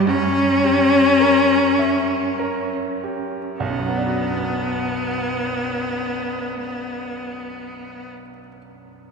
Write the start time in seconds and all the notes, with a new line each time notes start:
Already playing: G3 G4 B4 E5
0.07 F#2 C#4
0.64 G4
1.20 A#4
1.79 E5
2.39 A#4
3.04 G4
3.59 B1 B3
3.70 F#2
3.79 F#3
3.88 B3
3.97 D4
4.06 F#4